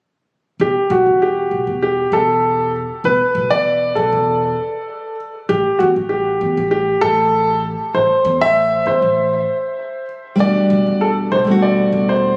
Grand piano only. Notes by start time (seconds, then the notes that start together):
0.61 G4
0.91 F#4
1.22 G4
1.82 G4
2.13 A4
3.05 B4
3.51 D5
3.95 A4
5.49 G4
5.79 F#4
6.09 G4
6.71 G4
7.01 A4
7.95 C5
8.41 E5
8.87 C5
10.40 D5
11.01 A4
11.32 C5
11.62 D5
12.09 C5